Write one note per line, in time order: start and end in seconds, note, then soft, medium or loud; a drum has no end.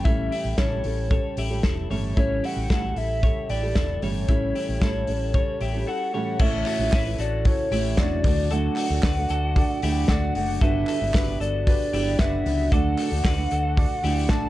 0.04 0.27 A1 loud
0.04 0.56 A2 medium
0.04 0.57 E3 medium
0.04 0.57 G3 medium
0.04 0.32 C#4 medium
0.04 0.58 C#4 medium
0.04 0.31 E4 loud
0.04 0.57 G4 medium
0.04 0.59 A4 medium
0.04 0.57 E5 loud
0.04 kick loud
0.04 closed hi-hat medium
0.32 0.58 E4 medium
0.32 0.58 G4 medium
0.32 open hi-hat medium
0.45 0.56 A1 medium
0.57 0.80 A1 medium
0.57 0.84 A2 medium
0.57 0.84 E3 medium
0.57 0.83 G3 medium
0.57 0.84 C#4 medium
0.57 1.08 E4 medium
0.57 0.84 G4 medium
0.57 1.08 A4 medium
0.57 0.85 A4 medium
0.57 1.60 C#5 medium
0.57 kick loud
0.57 snare loud
0.57 closed hi-hat medium
0.84 1.17 A1 medium
0.84 1.08 G3 medium
0.84 1.09 C#4 medium
0.84 1.10 G4 medium
0.84 1.10 A4 medium
0.84 open hi-hat medium
1.09 1.50 G3 medium
1.09 1.50 C#4 medium
1.09 1.50 G4 medium
1.09 1.49 A4 medium
1.09 1.38 A4 medium
1.09 1.38 C#5 medium
1.09 kick loud
1.09 closed hi-hat medium
1.37 1.59 A1 medium
1.37 1.64 E4 medium
1.37 1.64 G4 medium
1.37 open hi-hat medium
1.50 1.89 G3 soft
1.50 1.89 C#4 medium
1.50 1.90 G4 medium
1.50 1.90 A4 medium
1.63 1.86 E1 medium
1.63 1.90 E4 medium
1.63 1.90 A4 medium
1.63 kick loud
1.63 snare loud
1.63 closed hi-hat medium
1.90 2.12 G1 medium
1.90 2.15 A2 medium
1.90 2.14 E3 medium
1.90 2.15 G3 medium
1.90 2.16 C#4 medium
1.90 2.16 G4 medium
1.90 2.16 A4 loud
1.90 2.17 A4 medium
1.90 2.17 C#5 medium
1.90 open hi-hat medium
2.16 2.39 A1 loud
2.16 2.69 A2 medium
2.16 2.69 E3 medium
2.16 2.69 G3 medium
2.16 2.70 C#4 medium
2.16 2.44 C#4 medium
2.16 2.43 E4 loud
2.16 2.70 G4 medium
2.16 2.71 A4 medium
2.16 2.47 C#5 loud
2.16 kick loud
2.16 closed hi-hat medium
2.44 2.70 E4 medium
2.44 2.70 G4 medium
2.44 2.99 F#5 loud
2.44 open hi-hat medium
2.56 2.67 A1 medium
2.70 2.92 A1 loud
2.70 2.96 A2 medium
2.70 2.96 E3 medium
2.70 2.95 G3 medium
2.70 2.95 C#4 medium
2.70 3.20 E4 medium
2.70 2.96 G4 medium
2.70 3.20 A4 medium
2.70 2.97 A4 medium
2.70 kick loud
2.70 snare loud
2.70 closed hi-hat medium
2.96 3.29 A1 medium
2.96 3.21 G3 medium
2.96 3.22 C#4 medium
2.96 3.23 G4 medium
2.96 3.23 A4 medium
2.96 3.51 E5 loud
2.96 open hi-hat medium
3.22 3.62 G3 medium
3.22 3.63 C#4 medium
3.22 3.62 G4 medium
3.22 3.61 A4 medium
3.22 3.50 A4 medium
3.22 3.50 C#5 medium
3.22 kick loud
3.22 closed hi-hat medium
3.49 3.71 A1 medium
3.49 3.76 E4 medium
3.49 3.76 G4 medium
3.49 4.04 D5 medium
3.49 open hi-hat medium
3.62 4.01 G3 soft
3.62 4.02 G4 medium
3.62 4.02 A4 medium
3.75 3.97 E1 medium
3.75 4.03 E4 medium
3.75 4.03 A4 medium
3.75 kick loud
3.75 snare loud
3.75 closed hi-hat medium
4.02 4.24 G1 medium
4.02 4.28 A2 medium
4.02 4.28 E3 medium
4.02 4.29 G3 medium
4.02 4.28 C#4 medium
4.02 4.29 G4 medium
4.02 4.29 A4 medium
4.02 5.87 C#5 medium
4.02 4.29 C#5 medium
4.02 open hi-hat medium
4.28 4.50 A1 loud
4.28 4.80 A2 medium
4.28 4.82 E3 medium
4.28 4.81 G3 medium
4.28 4.82 C#4 medium
4.28 4.56 C#4 medium
4.28 4.55 E4 loud
4.28 4.82 G4 medium
4.28 4.83 A4 medium
4.28 kick loud
4.28 closed hi-hat medium
4.55 4.81 E4 medium
4.55 4.81 G4 medium
4.55 open hi-hat medium
4.68 4.79 A1 medium
4.81 5.03 A1 loud
4.81 5.08 A2 medium
4.81 5.08 E3 medium
4.81 5.06 G3 medium
4.81 5.07 C#4 medium
4.81 5.32 E4 medium
4.81 5.07 G4 medium
4.81 5.31 A4 medium
4.81 5.08 A4 medium
4.81 kick loud
4.81 snare loud
4.81 closed hi-hat medium
5.07 5.41 A1 medium
5.07 5.33 G3 medium
5.07 5.33 C#4 medium
5.07 5.34 G4 medium
5.07 5.34 A4 medium
5.07 open hi-hat medium
5.34 5.74 G3 medium
5.34 5.74 C#4 medium
5.34 5.73 G4 medium
5.34 5.61 A4 medium
5.34 5.72 A4 medium
5.34 5.61 C#5 medium
5.34 kick loud
5.34 closed hi-hat medium
5.61 5.83 A1 loud
5.61 5.87 E4 medium
5.61 5.87 G4 medium
5.61 open hi-hat medium
5.73 6.13 G3 medium
5.73 6.13 C#4 medium
5.73 6.13 G4 medium
5.73 6.13 A4 medium
5.87 6.14 E4 medium
5.87 6.13 A4 medium
5.87 6.12 F#5 medium
6.13 6.39 A2 medium
6.13 6.39 E3 medium
6.13 6.40 G3 medium
6.13 6.40 C#4 loud
6.13 6.40 G4 loud
6.13 6.38 A4 medium
6.13 6.41 A4 loud
6.13 6.40 C#5 medium
6.13 6.43 F#5 medium
6.39 6.61 A1 loud
6.39 6.80 A2 medium
6.39 6.80 E3 medium
6.39 6.80 A3 medium
6.39 6.80 C#4 loud
6.39 6.80 C#4 medium
6.39 6.67 E4 medium
6.39 6.80 E4 medium
6.39 6.79 E4 medium
6.39 6.65 A4 loud
6.39 6.81 A4 medium
6.39 6.81 C#5 loud
6.39 7.22 E5 loud
6.39 kick loud
6.39 crash loud
6.66 6.93 F#4 medium
6.66 6.92 A4 medium
6.66 clap medium
6.66 hi-hat pedal medium
6.66 open hi-hat medium
6.79 6.90 A1 medium
6.79 7.07 A3 soft
6.79 7.06 C#4 medium
6.79 7.05 E4 medium
6.92 7.14 A1 loud
6.92 7.33 C#4 medium
6.92 7.20 E4 medium
6.92 7.33 E4 medium
6.92 7.33 A4 medium
6.92 7.19 B4 medium
6.92 7.34 C#5 medium
6.92 kick loud
6.92 snare loud
6.92 clap loud
6.92 hi-hat pedal medium
6.92 open hi-hat medium
7.06 7.72 A3 soft
7.06 7.72 C#4 soft
7.06 7.72 E4 medium
7.18 7.51 A1 medium
7.18 7.69 F#4 medium
7.18 7.69 A4 medium
7.18 7.48 D5 medium
7.18 hi-hat pedal medium
7.18 open hi-hat medium
7.45 7.86 C#4 medium
7.45 7.86 E4 medium
7.45 7.86 A4 medium
7.45 7.86 C#5 medium
7.45 8.01 C#5 medium
7.45 kick loud
7.45 hi-hat pedal medium
7.45 open hi-hat medium
7.71 7.93 A1 loud
7.71 7.97 E3 medium
7.71 7.97 A3 medium
7.71 7.98 C#4 medium
7.71 7.99 E4 medium
7.71 7.98 G4 medium
7.71 hi-hat pedal medium
7.71 open hi-hat medium
7.97 8.20 E1 loud
7.97 8.24 A3 medium
7.97 8.25 C#4 medium
7.97 8.48 D4 medium
7.97 8.25 E4 medium
7.97 8.26 E4 medium
7.97 8.48 F#4 medium
7.97 8.24 A4 medium
7.97 8.25 C#5 medium
7.97 8.52 D5 medium
7.97 kick loud
7.97 snare loud
7.97 clap medium
8.24 8.67 D2 loud
8.24 8.50 D3 medium
8.24 8.50 F#3 medium
8.24 8.51 A3 medium
8.24 8.88 D4 medium
8.24 8.51 D4 medium
8.24 8.88 F#4 medium
8.24 8.88 A4 medium
8.24 8.88 D5 medium
8.24 kick loud
8.24 hi-hat pedal medium
8.24 open hi-hat medium
8.50 8.90 D3 medium
8.50 8.91 F#3 medium
8.50 8.90 A3 medium
8.50 8.89 D4 medium
8.50 8.77 F#4 medium
8.50 8.76 A4 loud
8.50 10.06 F#5 loud
8.50 hi-hat pedal medium
8.50 open hi-hat medium
8.76 9.03 F#4 medium
8.76 9.03 A4 medium
8.76 clap medium
8.76 hi-hat pedal medium
8.76 open hi-hat medium
8.90 9.01 D2 loud
8.90 9.17 F#3 soft
8.90 9.17 A3 medium
8.90 9.16 D4 medium
9.03 9.43 D4 medium
9.03 9.44 F#4 medium
9.03 9.30 F#4 medium
9.03 9.44 A4 medium
9.03 9.30 B4 medium
9.03 9.44 D5 medium
9.03 kick loud
9.03 snare loud
9.03 clap loud
9.17 9.82 F#3 medium
9.17 9.83 A3 medium
9.17 9.84 D4 medium
9.29 9.62 D2 loud
9.29 9.80 F#4 medium
9.29 9.80 A4 medium
9.29 hi-hat pedal medium
9.29 open hi-hat medium
9.56 9.96 D4 medium
9.56 9.96 F#4 medium
9.56 9.97 A4 medium
9.56 9.97 D5 loud
9.56 kick loud
9.56 hi-hat pedal medium
9.56 open hi-hat medium
9.82 10.04 D2 loud
9.82 10.08 D3 medium
9.82 10.09 F#3 medium
9.82 10.09 A3 medium
9.82 10.10 D4 medium
9.82 10.10 E4 medium
9.82 10.09 G4 medium
9.82 hi-hat pedal medium
9.82 open hi-hat medium
10.08 10.30 D2 loud
10.08 10.34 D3 medium
10.08 10.35 F#3 medium
10.08 10.36 A3 medium
10.08 10.49 D4 medium
10.08 10.59 D4 medium
10.08 10.36 D4 medium
10.08 10.59 F#4 medium
10.08 10.49 F#4 medium
10.08 10.50 A4 medium
10.08 10.50 D5 medium
10.08 10.33 F#5 loud
10.08 kick loud
10.08 snare loud
10.08 clap medium
10.08 hi-hat pedal medium
10.08 open hi-hat medium
10.35 10.57 F#1 medium
10.35 10.61 D3 medium
10.35 10.62 F#3 medium
10.35 10.62 A3 medium
10.35 10.62 D4 medium
10.35 10.63 F#5 loud
10.35 hi-hat pedal medium
10.35 open hi-hat medium
10.61 10.83 G1 loud
10.61 11.01 G2 medium
10.61 11.01 D3 medium
10.61 11.01 B3 medium
10.61 11.02 D4 loud
10.61 11.00 D4 loud
10.61 11.02 F#4 medium
10.61 10.88 F#4 medium
10.61 11.02 G4 medium
10.61 10.87 A4 loud
10.61 11.02 B4 loud
10.61 11.43 E5 loud
10.61 kick loud
10.61 hi-hat pedal medium
10.61 open hi-hat medium
10.87 11.15 F#4 medium
10.87 11.14 A4 medium
10.87 clap medium
10.87 hi-hat pedal medium
10.87 open hi-hat medium
11.01 11.12 G1 loud
11.01 11.28 F#3 soft
11.01 11.27 B3 medium
11.01 11.26 D4 medium
11.14 11.54 D4 medium
11.14 11.54 F#4 medium
11.14 11.55 G4 medium
11.14 11.41 G4 medium
11.14 11.40 B4 medium
11.14 11.55 B4 medium
11.14 kick loud
11.14 snare loud
11.14 clap loud
11.14 hi-hat pedal medium
11.14 open hi-hat medium
11.27 11.93 F#3 soft
11.27 11.93 B3 medium
11.27 11.94 D4 medium
11.40 11.73 G1 loud
11.40 11.90 F#4 medium
11.40 11.90 A4 medium
11.40 11.66 D5 medium
11.40 hi-hat pedal medium
11.40 open hi-hat medium
11.66 12.07 D4 medium
11.66 12.07 F#4 medium
11.66 12.07 G4 medium
11.66 12.07 B4 medium
11.66 12.21 D5 loud
11.66 kick loud
11.66 hi-hat pedal medium
11.66 open hi-hat medium
11.92 12.15 G1 loud
11.92 12.17 D3 medium
11.92 12.18 F#3 medium
11.92 12.19 B3 medium
11.92 12.20 D4 medium
11.92 12.20 E4 medium
11.92 12.20 G4 medium
11.92 hi-hat pedal medium
11.92 open hi-hat medium
12.18 12.43 D3 medium
12.18 12.44 F#3 medium
12.18 12.45 B3 medium
12.18 12.59 D4 medium
12.18 12.46 D4 medium
12.18 12.70 D4 medium
12.18 12.60 F#4 medium
12.18 12.69 F#4 medium
12.18 12.60 G4 medium
12.18 12.60 B4 medium
12.18 12.73 E5 loud
12.18 kick loud
12.18 snare loud
12.18 clap medium
12.18 hi-hat pedal medium
12.18 open hi-hat medium
12.45 12.67 C#2 medium
12.45 12.70 D3 medium
12.45 12.71 F#3 medium
12.45 12.72 B3 medium
12.45 12.72 D4 medium
12.45 hi-hat pedal medium
12.45 open hi-hat medium
12.72 12.94 D2 loud
12.72 13.11 D3 medium
12.72 13.11 F#3 medium
12.72 13.10 A3 loud
12.72 13.12 D4 loud
12.72 13.10 D4 medium
12.72 13.12 F#4 medium
12.72 12.98 F#4 medium
12.72 13.12 A4 medium
12.72 12.97 A4 loud
12.72 13.12 D5 loud
12.72 14.31 F#5 loud
12.72 kick loud
12.72 hi-hat pedal medium
12.72 open hi-hat medium
12.98 13.25 F#4 medium
12.98 13.25 A4 medium
12.98 clap medium
12.98 hi-hat pedal medium
12.98 open hi-hat medium
13.11 13.22 D2 loud
13.11 13.38 F#3 soft
13.11 13.36 A3 medium
13.11 13.35 D4 medium
13.24 13.46 D2 loud
13.24 13.64 D4 medium
13.24 13.65 F#4 medium
13.24 13.51 F#4 medium
13.24 13.65 A4 medium
13.24 13.51 B4 medium
13.24 13.65 D5 medium
13.24 kick loud
13.24 snare loud
13.24 clap loud
13.36 14.02 F#3 medium
13.36 14.03 A3 medium
13.36 14.03 D4 medium
13.51 13.84 D2 medium
13.51 14.01 F#4 medium
13.51 14.01 A4 medium
13.51 hi-hat pedal medium
13.51 open hi-hat medium
13.77 14.17 D4 medium
13.77 14.17 F#4 medium
13.77 14.17 A4 medium
13.77 14.18 D5 loud
13.77 kick loud
13.77 hi-hat pedal medium
13.77 open hi-hat medium
14.02 14.25 D2 loud
14.02 14.27 D3 medium
14.02 14.28 F#3 medium
14.02 14.29 A3 medium
14.02 14.30 D4 medium
14.02 14.30 E4 medium
14.02 14.29 G4 medium
14.02 hi-hat pedal medium
14.02 open hi-hat medium
14.29 14.49 A1 loud
14.29 14.49 D3 medium
14.29 14.49 F#3 medium
14.29 14.49 A3 medium
14.29 14.49 D4 medium
14.29 14.49 F#4 medium
14.29 14.49 A4 medium
14.29 14.49 D5 medium
14.29 14.49 A5 loud
14.29 kick loud
14.29 snare loud
14.29 clap medium
14.29 hi-hat pedal medium
14.29 open hi-hat medium